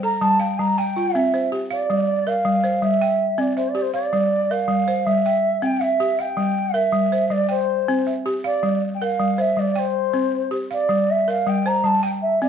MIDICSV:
0, 0, Header, 1, 3, 480
1, 0, Start_track
1, 0, Tempo, 373134
1, 2430, Time_signature, 12, 3, 24, 8
1, 7717, Tempo, 377121
1, 15976, End_track
2, 0, Start_track
2, 0, Title_t, "Bansuri"
2, 0, Program_c, 0, 73
2, 52, Note_on_c, 0, 82, 98
2, 276, Note_on_c, 0, 81, 97
2, 295, Note_off_c, 0, 82, 0
2, 516, Note_on_c, 0, 79, 86
2, 536, Note_off_c, 0, 81, 0
2, 755, Note_on_c, 0, 82, 96
2, 774, Note_off_c, 0, 79, 0
2, 1000, Note_on_c, 0, 79, 101
2, 1019, Note_off_c, 0, 82, 0
2, 1480, Note_on_c, 0, 76, 83
2, 1499, Note_off_c, 0, 79, 0
2, 1955, Note_off_c, 0, 76, 0
2, 2205, Note_on_c, 0, 74, 81
2, 2922, Note_on_c, 0, 77, 79
2, 2941, Note_off_c, 0, 74, 0
2, 3637, Note_on_c, 0, 76, 82
2, 3656, Note_off_c, 0, 77, 0
2, 4361, Note_on_c, 0, 74, 72
2, 4380, Note_off_c, 0, 76, 0
2, 4571, Note_off_c, 0, 74, 0
2, 4579, Note_on_c, 0, 72, 72
2, 4741, Note_on_c, 0, 74, 68
2, 4760, Note_off_c, 0, 72, 0
2, 4905, Note_on_c, 0, 72, 75
2, 4925, Note_off_c, 0, 74, 0
2, 5053, Note_off_c, 0, 72, 0
2, 5061, Note_on_c, 0, 74, 80
2, 5795, Note_on_c, 0, 77, 95
2, 5814, Note_off_c, 0, 74, 0
2, 6507, Note_on_c, 0, 76, 94
2, 6526, Note_off_c, 0, 77, 0
2, 7235, Note_on_c, 0, 79, 91
2, 7254, Note_off_c, 0, 76, 0
2, 7490, Note_on_c, 0, 76, 84
2, 7509, Note_off_c, 0, 79, 0
2, 7973, Note_on_c, 0, 79, 97
2, 7992, Note_off_c, 0, 76, 0
2, 8664, Note_on_c, 0, 76, 88
2, 8683, Note_off_c, 0, 79, 0
2, 9383, Note_on_c, 0, 74, 85
2, 9402, Note_off_c, 0, 76, 0
2, 9620, Note_off_c, 0, 74, 0
2, 9628, Note_on_c, 0, 72, 95
2, 10433, Note_off_c, 0, 72, 0
2, 10839, Note_on_c, 0, 74, 96
2, 11280, Note_off_c, 0, 74, 0
2, 11460, Note_on_c, 0, 79, 68
2, 11562, Note_on_c, 0, 77, 98
2, 11581, Note_off_c, 0, 79, 0
2, 12054, Note_on_c, 0, 76, 85
2, 12073, Note_off_c, 0, 77, 0
2, 12283, Note_on_c, 0, 74, 82
2, 12302, Note_off_c, 0, 76, 0
2, 12531, Note_on_c, 0, 72, 98
2, 12550, Note_off_c, 0, 74, 0
2, 13481, Note_off_c, 0, 72, 0
2, 13734, Note_on_c, 0, 74, 81
2, 14213, Note_on_c, 0, 76, 86
2, 14233, Note_off_c, 0, 74, 0
2, 14458, Note_on_c, 0, 77, 87
2, 14477, Note_off_c, 0, 76, 0
2, 14693, Note_on_c, 0, 79, 96
2, 14712, Note_off_c, 0, 77, 0
2, 14932, Note_on_c, 0, 82, 86
2, 14951, Note_off_c, 0, 79, 0
2, 15165, Note_on_c, 0, 81, 88
2, 15184, Note_off_c, 0, 82, 0
2, 15395, Note_off_c, 0, 81, 0
2, 15402, Note_on_c, 0, 79, 97
2, 15479, Note_off_c, 0, 79, 0
2, 15630, Note_on_c, 0, 76, 75
2, 15857, Note_off_c, 0, 76, 0
2, 15884, Note_on_c, 0, 74, 86
2, 15976, Note_off_c, 0, 74, 0
2, 15976, End_track
3, 0, Start_track
3, 0, Title_t, "Balafon"
3, 0, Program_c, 1, 12
3, 0, Note_on_c, 1, 72, 59
3, 42, Note_on_c, 1, 69, 67
3, 278, Note_on_c, 1, 55, 80
3, 509, Note_on_c, 1, 77, 68
3, 512, Note_off_c, 1, 72, 0
3, 747, Note_off_c, 1, 55, 0
3, 757, Note_off_c, 1, 69, 0
3, 762, Note_on_c, 1, 55, 68
3, 998, Note_off_c, 1, 55, 0
3, 1005, Note_on_c, 1, 79, 81
3, 1230, Note_off_c, 1, 77, 0
3, 1241, Note_on_c, 1, 65, 64
3, 1481, Note_on_c, 1, 60, 75
3, 1718, Note_off_c, 1, 79, 0
3, 1721, Note_on_c, 1, 72, 62
3, 1955, Note_off_c, 1, 60, 0
3, 1955, Note_off_c, 1, 65, 0
3, 1956, Note_on_c, 1, 67, 70
3, 2194, Note_on_c, 1, 77, 69
3, 2433, Note_off_c, 1, 67, 0
3, 2435, Note_off_c, 1, 72, 0
3, 2443, Note_on_c, 1, 55, 75
3, 2671, Note_off_c, 1, 77, 0
3, 2916, Note_off_c, 1, 55, 0
3, 2916, Note_on_c, 1, 70, 65
3, 3148, Note_on_c, 1, 55, 78
3, 3392, Note_on_c, 1, 72, 65
3, 3615, Note_off_c, 1, 55, 0
3, 3630, Note_on_c, 1, 55, 74
3, 3632, Note_off_c, 1, 70, 0
3, 3870, Note_off_c, 1, 55, 0
3, 3878, Note_on_c, 1, 79, 71
3, 4110, Note_off_c, 1, 72, 0
3, 4348, Note_on_c, 1, 60, 75
3, 4590, Note_on_c, 1, 76, 63
3, 4594, Note_off_c, 1, 79, 0
3, 4820, Note_on_c, 1, 67, 71
3, 4829, Note_off_c, 1, 60, 0
3, 5063, Note_on_c, 1, 77, 67
3, 5306, Note_off_c, 1, 67, 0
3, 5310, Note_on_c, 1, 55, 75
3, 5311, Note_off_c, 1, 76, 0
3, 5547, Note_off_c, 1, 77, 0
3, 5791, Note_off_c, 1, 55, 0
3, 5801, Note_on_c, 1, 70, 64
3, 6020, Note_on_c, 1, 55, 76
3, 6274, Note_on_c, 1, 72, 68
3, 6503, Note_off_c, 1, 55, 0
3, 6518, Note_off_c, 1, 70, 0
3, 6518, Note_on_c, 1, 55, 71
3, 6757, Note_off_c, 1, 55, 0
3, 6764, Note_on_c, 1, 79, 72
3, 6996, Note_off_c, 1, 72, 0
3, 7233, Note_on_c, 1, 60, 76
3, 7473, Note_on_c, 1, 76, 58
3, 7482, Note_off_c, 1, 79, 0
3, 7717, Note_off_c, 1, 60, 0
3, 7720, Note_on_c, 1, 67, 74
3, 7957, Note_on_c, 1, 77, 62
3, 8188, Note_on_c, 1, 55, 77
3, 8194, Note_off_c, 1, 76, 0
3, 8197, Note_off_c, 1, 67, 0
3, 8435, Note_off_c, 1, 77, 0
3, 8660, Note_on_c, 1, 70, 66
3, 8670, Note_off_c, 1, 55, 0
3, 8894, Note_on_c, 1, 55, 80
3, 9147, Note_on_c, 1, 72, 69
3, 9358, Note_off_c, 1, 55, 0
3, 9374, Note_on_c, 1, 55, 65
3, 9385, Note_off_c, 1, 70, 0
3, 9611, Note_on_c, 1, 79, 71
3, 9622, Note_off_c, 1, 55, 0
3, 9868, Note_off_c, 1, 72, 0
3, 10116, Note_on_c, 1, 60, 82
3, 10339, Note_off_c, 1, 79, 0
3, 10349, Note_on_c, 1, 76, 59
3, 10592, Note_off_c, 1, 60, 0
3, 10592, Note_on_c, 1, 67, 82
3, 10827, Note_on_c, 1, 77, 68
3, 11065, Note_on_c, 1, 55, 77
3, 11068, Note_off_c, 1, 76, 0
3, 11070, Note_off_c, 1, 67, 0
3, 11307, Note_off_c, 1, 77, 0
3, 11546, Note_off_c, 1, 55, 0
3, 11557, Note_on_c, 1, 70, 67
3, 11785, Note_on_c, 1, 55, 76
3, 12023, Note_on_c, 1, 72, 65
3, 12246, Note_off_c, 1, 55, 0
3, 12261, Note_on_c, 1, 55, 69
3, 12272, Note_off_c, 1, 70, 0
3, 12498, Note_on_c, 1, 79, 78
3, 12505, Note_off_c, 1, 55, 0
3, 12746, Note_off_c, 1, 72, 0
3, 12982, Note_on_c, 1, 60, 77
3, 13224, Note_off_c, 1, 79, 0
3, 13460, Note_on_c, 1, 67, 73
3, 13466, Note_off_c, 1, 60, 0
3, 13709, Note_on_c, 1, 77, 67
3, 13943, Note_on_c, 1, 55, 76
3, 13946, Note_off_c, 1, 67, 0
3, 14190, Note_off_c, 1, 77, 0
3, 14428, Note_off_c, 1, 55, 0
3, 14436, Note_on_c, 1, 70, 61
3, 14674, Note_on_c, 1, 55, 78
3, 14920, Note_on_c, 1, 72, 65
3, 15137, Note_off_c, 1, 55, 0
3, 15152, Note_on_c, 1, 55, 69
3, 15156, Note_off_c, 1, 70, 0
3, 15392, Note_on_c, 1, 79, 77
3, 15394, Note_off_c, 1, 55, 0
3, 15639, Note_off_c, 1, 72, 0
3, 15887, Note_on_c, 1, 60, 76
3, 15976, Note_off_c, 1, 60, 0
3, 15976, Note_off_c, 1, 79, 0
3, 15976, End_track
0, 0, End_of_file